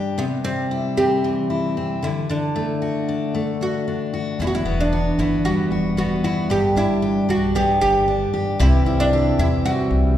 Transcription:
0.00 0.18 G2 medium
0.00 0.23 G3 medium
0.00 0.23 B3 medium
0.00 0.23 D4 soft
0.00 0.24 G4 medium
0.18 2.08 C3 medium
0.18 0.44 B3 medium
0.44 2.08 G3 medium
0.44 0.99 C4 medium
0.71 1.49 E4 medium
0.97 1.76 C4 medium
0.97 1.99 G4 medium
1.24 2.02 E3 medium
1.50 2.08 E4 soft
1.77 2.08 C4 medium
2.03 2.28 D3 medium
2.03 2.30 E4 medium
2.29 4.40 D3 medium
2.29 3.84 D4 medium
2.56 3.33 A3 medium
2.82 3.61 F#4 medium
3.09 3.86 D4 medium
3.35 4.45 A3 medium
3.61 4.13 F#4 medium
3.61 4.41 F#4 medium
3.88 4.45 D4 soft
4.14 4.40 F#4 medium
4.39 4.61 E1 medium
4.39 6.49 E2 medium
4.39 4.47 E4 medium
4.39 4.91 F#4 medium
4.47 4.54 F#4 medium
4.55 4.78 E4 medium
4.65 5.09 E1 medium
4.65 5.18 B3 medium
4.80 5.20 D4 medium
4.93 5.70 F#4 medium
5.18 5.50 G1 medium
5.18 5.97 B3 medium
5.18 5.43 E4 medium
5.45 7.55 G3 medium
5.45 5.97 F#4 medium
5.71 6.14 E1 medium
5.71 6.23 F#4 soft
5.97 6.76 B3 medium
5.97 6.24 F#4 medium
6.24 6.51 E4 medium
6.24 6.50 F#4 medium
6.50 6.71 G1 medium
6.50 8.60 G2 medium
6.50 7.02 G4 medium
6.50 6.75 G4 medium
6.75 7.19 G1 medium
6.75 7.28 D4 medium
6.75 7.30 E4 medium
7.02 7.81 G4 medium
7.29 7.61 B1 medium
7.29 8.06 D4 medium
7.29 7.55 F#4 medium
7.55 8.65 B3 medium
7.55 7.80 G4 medium
7.81 8.24 G1 medium
7.81 8.60 G4 medium
7.81 8.33 G4 medium
8.08 8.65 D4 soft
8.34 8.60 G4 medium
8.59 8.81 C2 loud
8.59 10.18 C3 medium
8.59 10.18 E3 medium
8.59 10.18 G3 medium
8.59 10.18 C4 medium
8.59 9.01 E4 medium
8.59 10.18 E4 medium
8.59 9.13 G4 medium
8.86 9.29 C2 medium
8.86 9.38 E4 medium
9.00 9.40 D4 medium
9.13 10.18 G4 medium
9.38 9.71 E2 medium
9.38 10.17 E4 medium
9.38 9.46 E4 medium
9.65 10.18 G3 medium
9.65 10.16 F#4 medium
9.91 10.18 C2 loud

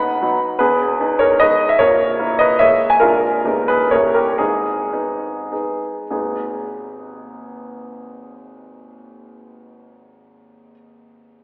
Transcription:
0.00 0.23 D#1 soft
0.00 0.23 D#2 medium
0.00 0.17 B3 soft
0.00 0.17 D#4 medium
0.00 0.23 D#5 medium
0.00 0.36 F#5 medium
0.00 0.40 B5 medium
0.21 0.56 F#3 soft
0.21 0.57 B3 soft
0.21 0.57 D#4 soft
0.59 0.99 E1 soft
0.59 0.99 E2 medium
0.59 1.16 G#4 medium
0.59 1.20 B4 medium
1.00 1.37 B3 medium
1.00 1.37 D#4 medium
1.19 1.39 A#4 medium
1.19 1.40 C#5 medium
1.40 1.76 G#3 soft
1.40 1.76 B3 soft
1.40 1.77 D#4 medium
1.40 1.68 B4 medium
1.40 1.70 D#5 medium
1.69 1.79 E5 medium
1.79 2.19 A#0 soft
1.79 2.19 A#1 medium
1.79 2.37 A#4 medium
1.79 2.40 C#5 medium
2.19 2.58 A#3 medium
2.19 2.58 E4 medium
2.39 2.60 B4 medium
2.39 2.61 D#5 medium
2.59 2.98 G#3 soft
2.59 2.98 A#3 soft
2.59 2.98 E4 medium
2.59 2.89 C#5 medium
2.59 2.91 E5 medium
2.90 3.01 G#5 medium
3.00 3.44 A#0 medium
3.00 3.44 A#1 soft
3.00 3.41 G#3 soft
3.00 3.42 A#3 soft
3.00 3.42 D4 soft
3.00 3.64 F4 medium
3.00 3.68 A#4 medium
3.45 3.90 D#1 soft
3.45 3.90 D#2 medium
3.45 3.88 G#3 soft
3.45 3.88 B3 soft
3.45 3.89 D#4 soft
3.68 3.91 G#4 medium
3.68 3.92 B4 medium
3.91 4.38 D#1 soft
3.91 4.38 D#2 medium
3.91 4.35 G3 soft
3.91 4.36 A#3 soft
3.91 4.36 E4 soft
3.91 4.13 A#4 medium
3.91 4.15 C#5 medium
4.14 4.38 G4 medium
4.14 4.39 A#4 medium
4.38 4.92 G#1 soft
4.38 4.92 G#2 soft
4.38 4.92 D#4 soft
4.38 5.80 G#4 medium
4.93 5.47 B3 soft
4.93 5.47 D#4 soft
5.52 6.06 G#3 soft
5.52 6.06 B3 soft
5.52 6.07 D#4 soft
6.11 10.72 G#1 soft
6.11 10.72 D#2 soft
6.11 10.72 G#3 soft
6.11 10.72 B3 soft
6.11 10.72 D#4 soft
6.11 10.72 G#4 soft

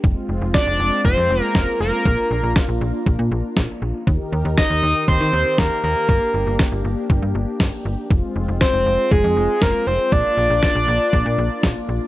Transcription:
0.04 0.15 F1 loud
0.04 2.04 G#3 medium
0.04 2.04 C4 medium
0.04 4.03 F4 medium
0.04 kick loud
0.29 0.40 F1 medium
0.42 0.53 F1 loud
0.54 1.01 D5 loud
0.54 kick loud
0.54 snare loud
0.67 0.78 F1 medium
0.79 0.91 F1 loud
1.05 1.16 F1 loud
1.05 1.43 C5 loud
1.05 kick loud
1.17 1.29 F2 loud
1.30 1.41 F1 loud
1.43 1.55 A#4 loud
1.55 1.66 F1 medium
1.55 1.80 A#4 medium
1.55 kick loud
1.55 snare loud
1.80 1.92 F1 loud
1.80 2.52 A#4 medium
2.05 2.17 A#1 loud
2.05 4.05 A#3 medium
2.05 4.05 D4 medium
2.05 kick loud
2.31 2.42 A#1 loud
2.43 2.55 A#1 loud
2.56 kick loud
2.56 snare loud
2.69 2.80 A#1 medium
2.81 2.93 A#1 loud
3.06 3.18 A#1 loud
3.06 kick loud
3.19 3.30 A#2 medium
3.32 3.43 A#1 loud
3.57 3.68 A#1 medium
3.57 kick loud
3.57 snare loud
3.82 3.93 A#1 medium
4.07 4.19 D#2 loud
4.07 6.07 D#3 medium
4.07 6.07 D#4 medium
4.07 8.07 G4 medium
4.07 6.07 A#4 medium
4.07 kick loud
4.32 4.44 D#2 loud
4.45 4.56 D#2 loud
4.58 5.05 D#5 loud
4.58 kick loud
4.58 snare loud
4.70 4.82 D#2 medium
4.83 4.94 D#2 loud
5.08 5.19 D#2 loud
5.08 5.60 C5 loud
5.08 kick loud
5.21 5.32 D#3 loud
5.33 5.45 D#2 loud
5.58 5.70 D#2 loud
5.58 5.83 A#4 medium
5.58 kick loud
5.58 snare loud
5.84 5.95 D#2 loud
5.84 6.55 A#4 medium
6.09 6.20 G1 loud
6.09 8.09 A#3 medium
6.09 8.09 D4 medium
6.09 kick loud
6.34 6.46 G1 loud
6.47 6.58 G1 loud
6.59 kick loud
6.59 snare loud
6.72 6.83 G1 medium
6.85 6.96 G1 loud
7.10 7.21 G1 loud
7.10 kick loud
7.22 7.34 G2 medium
7.35 7.46 G1 loud
7.60 7.71 G1 medium
7.60 kick loud
7.60 snare loud
7.85 7.97 G1 loud
8.11 8.22 F1 loud
8.11 10.10 G#3 medium
8.11 10.10 C4 medium
8.11 12.07 F4 medium
8.11 kick loud
8.36 8.47 F1 loud
8.48 8.60 F1 loud
8.61 9.13 C5 loud
8.61 kick loud
8.61 snare loud
8.74 8.85 F1 medium
8.86 8.98 F1 medium
9.11 9.23 F1 loud
9.11 9.63 G#4 medium
9.11 kick loud
9.24 9.35 F2 loud
9.37 9.48 F1 loud
9.62 9.73 F1 loud
9.62 9.88 A#4 loud
9.62 kick loud
9.62 snare loud
9.87 9.98 F1 loud
9.87 10.14 C5 loud
10.12 10.24 A#1 loud
10.12 12.07 A#3 medium
10.12 12.07 D4 medium
10.12 11.63 D5 loud
10.12 kick loud
10.37 10.49 A#1 medium
10.50 10.62 A#1 loud
10.63 kick loud
10.63 snare loud
10.75 10.87 A#1 loud
10.88 10.99 A#1 loud
11.13 11.25 A#1 loud
11.13 kick loud
11.26 11.37 A#2 loud
11.38 11.50 A#1 loud
11.63 11.75 A#1 medium
11.63 kick loud
11.63 snare loud
11.89 12.00 A#1 medium

